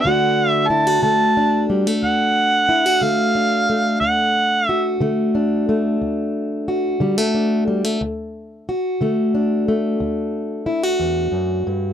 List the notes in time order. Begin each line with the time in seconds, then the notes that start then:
0.01 D2 D3 F#5
0.06 A3 D4 F#4
0.50 E5
0.68 E4 A5
0.87 F#4
1.03 D3 A3 A5
1.37 D4
1.70 G3
1.87 A3
2.03 D2 F#5
2.69 E4
2.86 F#4
3.01 D3 A3 F5
3.35 D4
3.70 A3
4.00 D2 F#5
4.68 F#4 E5
5.00 D3 A3
5.35 D4
5.69 A3
6.01 D2
6.68 F#4
7.00 D3 G3
7.18 A3
7.35 D4
7.68 G3
7.84 A3
8.01 D2
8.69 F#4
9.01 D3 A3
9.34 D4
9.68 A3
10.00 D2
10.66 E4
10.83 F#4
11.00 E2
11.32 F#2
11.67 G2